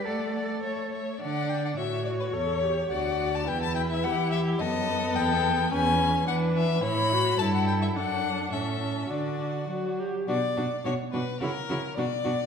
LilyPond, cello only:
\new Staff \with { instrumentName = "Cello" } { \clef bass \time 2/4 \key d \major \tempo 4 = 106 a'4. r8 | d4 a,4 | e,4 d,4 | e,4 e4 |
fis,4 e,4 | e,4 e4 | a,4 g,4 | fis,4 a,4 |
d4 fis4 | \key b \minor b,8 b,8 b,8 b,8 | cis8 cis8 b,8 b,8 | }